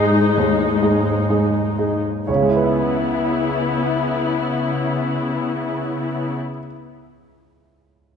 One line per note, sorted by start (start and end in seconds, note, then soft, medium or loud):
0.00 2.04 G#2 soft
0.00 2.30 G#2 soft
0.00 1.30 G#3 soft
0.00 2.00 G#3 medium
0.00 0.83 D#4 soft
0.00 2.00 D#4 medium
0.00 0.83 G#4 soft
0.00 0.77 C5 soft
0.00 2.30 D#5 soft
0.37 0.81 D#2 soft
0.83 1.25 D#4 soft
0.83 1.25 G#4 soft
1.30 1.75 G#3 soft
1.30 1.75 D#4 soft
1.30 1.75 G#4 soft
1.78 2.24 D#4 soft
1.78 2.24 G#4 soft
2.27 6.36 C#2 soft
2.27 6.36 C#3 soft
2.27 6.36 B3 soft
2.27 6.36 E4 soft
2.27 6.35 C#5 soft
2.35 6.44 C#3 soft
2.42 6.51 G#3 soft
2.49 6.58 E4 soft
2.56 6.64 B4 soft
2.64 6.72 E5 soft